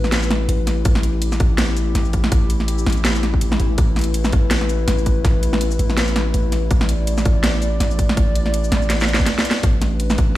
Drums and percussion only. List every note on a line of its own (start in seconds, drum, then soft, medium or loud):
0.04 snare medium
0.04 shaker soft
0.12 snare loud
0.12 closed hi-hat medium
0.23 shaker medium
0.31 snare medium
0.31 closed hi-hat soft
0.49 closed hi-hat medium
0.67 snare medium
0.67 closed hi-hat medium
0.85 kick loud
0.85 closed hi-hat medium
0.95 snare medium
1.03 closed hi-hat medium
1.22 closed hi-hat medium
1.32 snare medium
1.32 shaker medium
1.40 kick loud
1.40 closed hi-hat medium
1.58 snare loud
1.58 snare medium
1.58 closed hi-hat medium
1.77 closed hi-hat soft
1.77 shaker medium
1.95 snare medium
1.95 closed hi-hat medium
2.05 shaker soft
2.13 kick medium
2.13 closed hi-hat medium
2.24 snare medium
2.32 kick loud
2.32 closed hi-hat medium
2.50 closed hi-hat medium
2.60 snare medium
2.68 closed hi-hat medium
2.78 shaker medium
2.86 snare medium
2.86 closed hi-hat soft
2.90 closed hi-hat soft
2.92 closed hi-hat soft
2.97 shaker soft
3.05 snare loud
3.05 closed hi-hat medium
3.15 shaker medium
3.23 snare soft
3.23 closed hi-hat soft
3.34 kick medium
3.41 closed hi-hat medium
3.52 snare medium
3.60 closed hi-hat medium
3.78 kick loud
3.78 closed hi-hat medium
3.96 snare medium
3.96 closed hi-hat soft
3.99 closed hi-hat soft
4.01 closed hi-hat soft
4.04 closed hi-hat medium
4.14 closed hi-hat medium
4.25 snare medium
4.25 shaker medium
4.33 kick loud
4.33 closed hi-hat medium
4.51 snare loud
4.51 closed hi-hat medium
4.61 snare medium
4.69 closed hi-hat soft
4.69 shaker medium
4.88 snare medium
4.88 closed hi-hat medium
4.98 shaker soft
5.06 kick medium
5.06 closed hi-hat medium
5.25 kick loud
5.25 snare medium
5.25 closed hi-hat medium
5.43 closed hi-hat medium
5.53 snare medium
5.61 closed hi-hat medium
5.71 shaker medium
5.79 closed hi-hat medium
5.90 snare medium
5.90 shaker soft
5.97 snare loud
5.97 closed hi-hat medium
6.08 shaker medium
6.16 snare medium
6.16 closed hi-hat soft
6.34 closed hi-hat medium
6.52 snare medium
6.52 closed hi-hat medium
6.71 kick loud
6.71 closed hi-hat medium
6.81 snare medium
6.89 closed hi-hat medium
7.07 closed hi-hat medium
7.18 snare medium
7.18 shaker medium
7.25 kick loud
7.25 closed hi-hat medium
7.44 snare loud
7.44 snare medium
7.44 closed hi-hat medium
7.62 closed hi-hat soft
7.62 shaker medium
7.80 snare medium
7.80 closed hi-hat medium
7.91 shaker soft
7.99 kick medium
7.99 closed hi-hat medium
8.09 snare medium
8.17 kick loud
8.17 closed hi-hat medium
8.35 closed hi-hat medium
8.46 snare medium
8.54 closed hi-hat medium
8.64 shaker medium
8.72 snare medium
8.72 closed hi-hat medium
8.82 shaker soft
8.90 snare medium
8.90 closed hi-hat medium
9.00 snare medium
9.00 shaker medium
9.08 closed hi-hat soft
9.14 snare medium
9.19 kick medium
9.19 shaker soft
9.26 snare medium
9.26 closed hi-hat medium
9.39 snare loud
9.45 closed hi-hat medium
9.51 snare loud
9.63 kick loud
9.63 closed hi-hat medium
9.82 snare medium
9.82 closed hi-hat medium
10.00 closed hi-hat medium
10.10 snare medium
10.10 shaker medium
10.18 kick loud
10.18 closed hi-hat medium